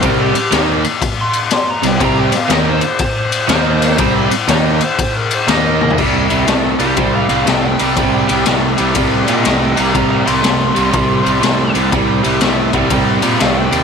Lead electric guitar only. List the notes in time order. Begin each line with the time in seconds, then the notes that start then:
0.06 A#4
0.23 G4
0.38 G4
1.21 C6
1.53 C6
1.70 A#5
1.88 G5
2.04 A#5
2.20 G5
2.37 F5
2.52 D#5
2.69 C5
4.50 D#5
4.83 C5
5.17 A#4
5.35 C5
5.51 D#5
5.66 D#5
6.81 G4
6.99 C5
7.15 F5
7.48 G5
7.63 G5
9.29 D#5 G5
9.46 D#5 G5
9.62 D#5 G5
9.79 F5 A#5
9.94 F5 A#5
10.10 F5 A#5
10.28 C6
13.42 F5
13.59 G5